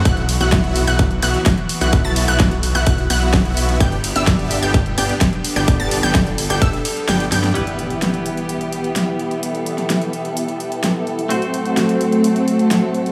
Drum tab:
RD |--x---x---x---x-|--x---x---x---x-|--x---x---x---x-|--x---x---x---x-|
HH |xxoxxxoxxxoxxxox|xxoxxxoxxxoxoxox|xxoxxxoxxxoxxxox|xxoxxxoxxxoxoxox|
SD |----o-------o---|---oo-------o---|----o-------o---|---oo-------o-oo|
BD |o---o---o---o---|o---o---o---o---|o---o---o---o---|o---o---o-------|

RD |----------------|----------------|----------------|
HH |xxxxxxxxxxxxx-xx|xxxxxxxxxxxxx-xx|xxxxxxxxxxxxx-xx|
SD |----o-------o---|---oo-------o---|----o-------o---|
BD |----------------|----------------|----------------|